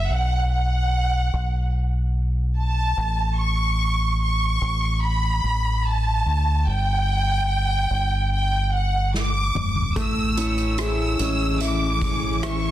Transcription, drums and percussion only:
0, 0, Header, 1, 2, 480
1, 0, Start_track
1, 0, Key_signature, 3, "major"
1, 0, Tempo, 821918
1, 58, Time_signature, 4, 2, 24, 8
1, 7423, End_track
2, 0, Start_track
2, 0, Title_t, "Drums"
2, 5339, Note_on_c, 9, 38, 45
2, 5398, Note_off_c, 9, 38, 0
2, 5578, Note_on_c, 9, 45, 74
2, 5636, Note_off_c, 9, 45, 0
2, 5697, Note_on_c, 9, 43, 67
2, 5755, Note_off_c, 9, 43, 0
2, 5818, Note_on_c, 9, 36, 89
2, 5818, Note_on_c, 9, 42, 62
2, 5876, Note_off_c, 9, 36, 0
2, 5876, Note_off_c, 9, 42, 0
2, 6057, Note_on_c, 9, 42, 69
2, 6116, Note_off_c, 9, 42, 0
2, 6176, Note_on_c, 9, 42, 35
2, 6235, Note_off_c, 9, 42, 0
2, 6295, Note_on_c, 9, 42, 76
2, 6299, Note_on_c, 9, 37, 82
2, 6353, Note_off_c, 9, 42, 0
2, 6358, Note_off_c, 9, 37, 0
2, 6536, Note_on_c, 9, 42, 67
2, 6594, Note_off_c, 9, 42, 0
2, 6776, Note_on_c, 9, 42, 78
2, 6835, Note_off_c, 9, 42, 0
2, 7017, Note_on_c, 9, 36, 80
2, 7020, Note_on_c, 9, 42, 57
2, 7075, Note_off_c, 9, 36, 0
2, 7078, Note_off_c, 9, 42, 0
2, 7260, Note_on_c, 9, 37, 94
2, 7261, Note_on_c, 9, 42, 64
2, 7319, Note_off_c, 9, 37, 0
2, 7319, Note_off_c, 9, 42, 0
2, 7423, End_track
0, 0, End_of_file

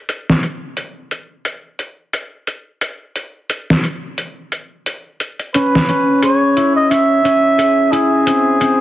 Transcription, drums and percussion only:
0, 0, Header, 1, 2, 480
1, 0, Start_track
1, 0, Key_signature, 4, "minor"
1, 0, Tempo, 681818
1, 63, Time_signature, 4, 2, 24, 8
1, 6199, End_track
2, 0, Start_track
2, 0, Title_t, "Drums"
2, 62, Note_on_c, 9, 42, 73
2, 133, Note_off_c, 9, 42, 0
2, 208, Note_on_c, 9, 38, 34
2, 278, Note_off_c, 9, 38, 0
2, 302, Note_on_c, 9, 42, 57
2, 372, Note_off_c, 9, 42, 0
2, 541, Note_on_c, 9, 42, 73
2, 611, Note_off_c, 9, 42, 0
2, 783, Note_on_c, 9, 42, 57
2, 853, Note_off_c, 9, 42, 0
2, 1021, Note_on_c, 9, 42, 72
2, 1091, Note_off_c, 9, 42, 0
2, 1261, Note_on_c, 9, 42, 56
2, 1331, Note_off_c, 9, 42, 0
2, 1502, Note_on_c, 9, 42, 75
2, 1573, Note_off_c, 9, 42, 0
2, 1741, Note_on_c, 9, 42, 55
2, 1811, Note_off_c, 9, 42, 0
2, 1981, Note_on_c, 9, 42, 79
2, 2051, Note_off_c, 9, 42, 0
2, 2222, Note_on_c, 9, 42, 57
2, 2292, Note_off_c, 9, 42, 0
2, 2461, Note_on_c, 9, 42, 70
2, 2532, Note_off_c, 9, 42, 0
2, 2606, Note_on_c, 9, 38, 36
2, 2677, Note_off_c, 9, 38, 0
2, 2701, Note_on_c, 9, 42, 57
2, 2771, Note_off_c, 9, 42, 0
2, 2942, Note_on_c, 9, 42, 73
2, 3012, Note_off_c, 9, 42, 0
2, 3182, Note_on_c, 9, 42, 54
2, 3252, Note_off_c, 9, 42, 0
2, 3423, Note_on_c, 9, 42, 74
2, 3494, Note_off_c, 9, 42, 0
2, 3662, Note_on_c, 9, 42, 54
2, 3732, Note_off_c, 9, 42, 0
2, 3798, Note_on_c, 9, 42, 35
2, 3868, Note_off_c, 9, 42, 0
2, 3902, Note_on_c, 9, 42, 76
2, 3973, Note_off_c, 9, 42, 0
2, 4050, Note_on_c, 9, 38, 33
2, 4121, Note_off_c, 9, 38, 0
2, 4145, Note_on_c, 9, 42, 55
2, 4215, Note_off_c, 9, 42, 0
2, 4382, Note_on_c, 9, 42, 75
2, 4453, Note_off_c, 9, 42, 0
2, 4624, Note_on_c, 9, 42, 55
2, 4695, Note_off_c, 9, 42, 0
2, 4865, Note_on_c, 9, 42, 75
2, 4936, Note_off_c, 9, 42, 0
2, 5105, Note_on_c, 9, 42, 55
2, 5175, Note_off_c, 9, 42, 0
2, 5342, Note_on_c, 9, 42, 78
2, 5413, Note_off_c, 9, 42, 0
2, 5583, Note_on_c, 9, 42, 56
2, 5653, Note_off_c, 9, 42, 0
2, 5821, Note_on_c, 9, 42, 79
2, 5892, Note_off_c, 9, 42, 0
2, 6061, Note_on_c, 9, 42, 59
2, 6131, Note_off_c, 9, 42, 0
2, 6199, End_track
0, 0, End_of_file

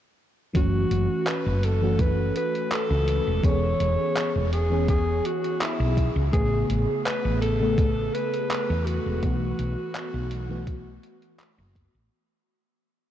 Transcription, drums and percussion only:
0, 0, Header, 1, 2, 480
1, 0, Start_track
1, 0, Key_signature, 3, "minor"
1, 0, Tempo, 722892
1, 366, Time_signature, 4, 2, 24, 8
1, 8704, End_track
2, 0, Start_track
2, 0, Title_t, "Drums"
2, 364, Note_on_c, 9, 36, 109
2, 366, Note_on_c, 9, 42, 78
2, 430, Note_off_c, 9, 36, 0
2, 432, Note_off_c, 9, 42, 0
2, 605, Note_on_c, 9, 42, 65
2, 672, Note_off_c, 9, 42, 0
2, 842, Note_on_c, 9, 39, 115
2, 842, Note_on_c, 9, 42, 81
2, 909, Note_off_c, 9, 39, 0
2, 909, Note_off_c, 9, 42, 0
2, 1084, Note_on_c, 9, 42, 66
2, 1150, Note_off_c, 9, 42, 0
2, 1322, Note_on_c, 9, 42, 75
2, 1323, Note_on_c, 9, 36, 114
2, 1388, Note_off_c, 9, 42, 0
2, 1390, Note_off_c, 9, 36, 0
2, 1565, Note_on_c, 9, 42, 67
2, 1632, Note_off_c, 9, 42, 0
2, 1694, Note_on_c, 9, 42, 35
2, 1761, Note_off_c, 9, 42, 0
2, 1805, Note_on_c, 9, 39, 114
2, 1805, Note_on_c, 9, 42, 75
2, 1872, Note_off_c, 9, 39, 0
2, 1872, Note_off_c, 9, 42, 0
2, 2045, Note_on_c, 9, 42, 69
2, 2111, Note_off_c, 9, 42, 0
2, 2282, Note_on_c, 9, 36, 118
2, 2289, Note_on_c, 9, 42, 77
2, 2349, Note_off_c, 9, 36, 0
2, 2355, Note_off_c, 9, 42, 0
2, 2526, Note_on_c, 9, 42, 65
2, 2593, Note_off_c, 9, 42, 0
2, 2767, Note_on_c, 9, 39, 121
2, 2767, Note_on_c, 9, 42, 82
2, 2833, Note_off_c, 9, 39, 0
2, 2833, Note_off_c, 9, 42, 0
2, 3007, Note_on_c, 9, 42, 67
2, 3074, Note_off_c, 9, 42, 0
2, 3243, Note_on_c, 9, 36, 125
2, 3245, Note_on_c, 9, 42, 78
2, 3309, Note_off_c, 9, 36, 0
2, 3312, Note_off_c, 9, 42, 0
2, 3486, Note_on_c, 9, 42, 67
2, 3553, Note_off_c, 9, 42, 0
2, 3614, Note_on_c, 9, 42, 37
2, 3681, Note_off_c, 9, 42, 0
2, 3727, Note_on_c, 9, 39, 115
2, 3727, Note_on_c, 9, 42, 83
2, 3794, Note_off_c, 9, 39, 0
2, 3794, Note_off_c, 9, 42, 0
2, 3964, Note_on_c, 9, 36, 58
2, 3968, Note_on_c, 9, 42, 66
2, 4031, Note_off_c, 9, 36, 0
2, 4034, Note_off_c, 9, 42, 0
2, 4205, Note_on_c, 9, 36, 121
2, 4209, Note_on_c, 9, 42, 79
2, 4271, Note_off_c, 9, 36, 0
2, 4275, Note_off_c, 9, 42, 0
2, 4448, Note_on_c, 9, 42, 68
2, 4514, Note_off_c, 9, 42, 0
2, 4691, Note_on_c, 9, 39, 124
2, 4691, Note_on_c, 9, 42, 81
2, 4757, Note_off_c, 9, 39, 0
2, 4757, Note_off_c, 9, 42, 0
2, 4929, Note_on_c, 9, 42, 63
2, 4996, Note_off_c, 9, 42, 0
2, 5166, Note_on_c, 9, 36, 121
2, 5169, Note_on_c, 9, 42, 76
2, 5232, Note_off_c, 9, 36, 0
2, 5236, Note_off_c, 9, 42, 0
2, 5410, Note_on_c, 9, 42, 66
2, 5476, Note_off_c, 9, 42, 0
2, 5535, Note_on_c, 9, 42, 35
2, 5601, Note_off_c, 9, 42, 0
2, 5649, Note_on_c, 9, 39, 118
2, 5649, Note_on_c, 9, 42, 79
2, 5715, Note_off_c, 9, 39, 0
2, 5715, Note_off_c, 9, 42, 0
2, 5889, Note_on_c, 9, 42, 68
2, 5955, Note_off_c, 9, 42, 0
2, 6126, Note_on_c, 9, 36, 122
2, 6127, Note_on_c, 9, 42, 77
2, 6192, Note_off_c, 9, 36, 0
2, 6193, Note_off_c, 9, 42, 0
2, 6367, Note_on_c, 9, 42, 64
2, 6433, Note_off_c, 9, 42, 0
2, 6607, Note_on_c, 9, 39, 122
2, 6607, Note_on_c, 9, 42, 75
2, 6673, Note_off_c, 9, 39, 0
2, 6673, Note_off_c, 9, 42, 0
2, 6846, Note_on_c, 9, 42, 66
2, 6912, Note_off_c, 9, 42, 0
2, 7085, Note_on_c, 9, 36, 120
2, 7087, Note_on_c, 9, 42, 73
2, 7152, Note_off_c, 9, 36, 0
2, 7153, Note_off_c, 9, 42, 0
2, 7327, Note_on_c, 9, 42, 64
2, 7393, Note_off_c, 9, 42, 0
2, 7452, Note_on_c, 9, 42, 35
2, 7519, Note_off_c, 9, 42, 0
2, 7567, Note_on_c, 9, 39, 118
2, 7567, Note_on_c, 9, 42, 76
2, 7633, Note_off_c, 9, 39, 0
2, 7633, Note_off_c, 9, 42, 0
2, 7805, Note_on_c, 9, 36, 60
2, 7809, Note_on_c, 9, 42, 63
2, 7871, Note_off_c, 9, 36, 0
2, 7876, Note_off_c, 9, 42, 0
2, 8704, End_track
0, 0, End_of_file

